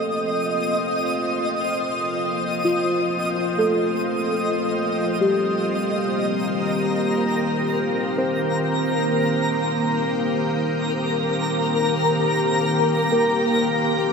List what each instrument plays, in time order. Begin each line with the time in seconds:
Already playing: ambient pad F3 A#3 C4 F4 G4 C5, synth texture D#5 D#6
2.64 synth keys F4
3.58 synth keys A4
5.21 synth keys G4
5.89 ambient pad D#3, synth texture A#4 A#6
6.12 ambient pad G4
8.18 synth keys C5
13.12 synth keys A#4
13.57 ambient pad F3
14.07 ambient pad D#4